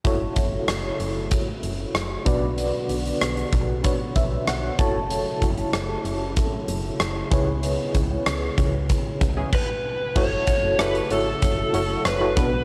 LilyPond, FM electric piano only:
\new Staff \with { instrumentName = "FM electric piano" } { \time 4/4 \key fis \minor \tempo 4 = 95 << { r2. r8 b,8~ | b,4 r4. e''8 fis''8 a''8 | r2. r8 cis8~ | cis4 r2. |
r2. r8 b,8 | } \\ { <e' fis' a' cis''>2.~ <e' fis' a' cis''>8 <d' fis' b' d''>8~ | <d' fis' b' d''>2 <d' fis' b' cis''>4. <e' fis' a' cis''>8~ | <e' fis' a' cis''>2.~ <e' fis' a' cis''>8 <e' gis' b' cis''>8~ | <e' gis' b' cis''>2. r4 |
<e' fis' a' cis''>8. r16 <e' fis' a' cis''>16 r16 <e' fis' a' cis''>8. r16 <e' fis' a' cis''>8 r16 <e' fis' a' cis''>16 <b d' fis' b'>8 | } >> }